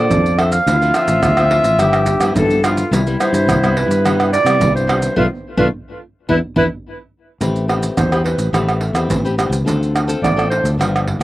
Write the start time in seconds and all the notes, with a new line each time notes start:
Already playing: D4 A4 C5 D5
0.10 F2 F3, pandeiro, maracas, surdo
0.26 pandeiro, maracas
0.38 D4 A4 C5 E5, pandeiro, tamborim
0.51 F5, pandeiro, maracas
0.66 D2 D3 F3 C4 E4 F4, pandeiro, maracas, surdo
0.81 F3 C4 E4, pandeiro, maracas
0.94 F3 C4 E5, pandeiro, tamborim, maracas
1.08 A1, pandeiro, maracas
1.22 D2 A2, pandeiro, tamborim, maracas, surdo
1.37 F3 C4, pandeiro, tamborim, maracas
1.51 pandeiro
1.64 A1, pandeiro, maracas
1.78 G1 G2 F3 B3 E4 G4, pandeiro, tamborim, maracas, surdo
1.93 pandeiro, tamborim, maracas
2.06 pandeiro, maracas, surdo
2.20 G2 F3 B3 E4, pandeiro, tamborim, maracas
2.35 G2 D3 A4, pandeiro, maracas, surdo
2.50 pandeiro, maracas
2.64 F3 B3 E4 F4, pandeiro, tamborim, maracas
2.77 pandeiro, maracas
2.91 C2 C3 G3 B3 E4, pandeiro, maracas, surdo
3.06 G3 B3 E4, pandeiro, maracas
3.20 G3 B3 E4 C5, pandeiro, tamborim, maracas
3.33 G2 C5, pandeiro, maracas
3.47 C2 G2, pandeiro, tamborim, maracas, surdo
3.63 G3 B3 E4, pandeiro, tamborim, maracas
3.76 B4, pandeiro
3.88 G2, pandeiro, maracas
4.05 C3 G3 B3 E4, pandeiro, tamborim, maracas, surdo
4.20 pandeiro, tamborim, maracas
4.33 D5, pandeiro, maracas
4.45 C3 G3 B3 E4, pandeiro, tamborim, maracas
4.60 C2 G2, pandeiro, maracas, surdo
4.75 C5, pandeiro, maracas
4.87 G3 B3 E4, pandeiro, tamborim
5.02 pandeiro, maracas
5.16 B1 A3 B3 D4 F4 B4, surdo
5.57 B1 A3 B3 D4 F4 B4, surdo
6.28 E2 B3 D4 E4 B4, surdo
6.55 E2 B3 D4 E4 B4, surdo
7.41 A1 A3 C4 G4 B4, pandeiro, maracas, surdo
7.56 pandeiro, maracas
7.68 C4 G4 B4, pandeiro, tamborim
7.83 pandeiro, maracas
7.97 E2 E3 C5, pandeiro, tamborim, maracas, surdo
8.12 C4 G4 B4, pandeiro, tamborim, maracas
8.24 C4 G4 B4, pandeiro
8.38 A1, pandeiro, maracas
8.53 A1 A3 C4 G4 B4, pandeiro, tamborim, maracas, surdo
8.69 pandeiro, tamborim, maracas
8.81 pandeiro
8.93 E2 C4 G4 B4, pandeiro, tamborim, maracas
9.09 A1 E3, pandeiro, maracas, surdo
9.25 C4 G4 B4, pandeiro, maracas
9.38 C4 G4 B4, pandeiro, tamborim, maracas
9.50 C#2, pandeiro, maracas
9.65 D2 D3 C4 F4 A4, pandeiro, maracas, surdo
9.83 pandeiro, maracas
9.96 pandeiro, tamborim, maracas
10.07 C4 F4 A4, pandeiro, maracas
10.22 A1 A2 D5, pandeiro, tamborim, maracas, surdo
10.36 C4 F4 A4, pandeiro, tamborim, maracas
10.50 C5, pandeiro
10.64 D2, pandeiro, maracas
10.78 G1 G2 F3 B3 D4, pandeiro, tamborim, maracas, surdo
10.96 pandeiro, tamborim, maracas
11.07 pandeiro, surdo
11.19 D2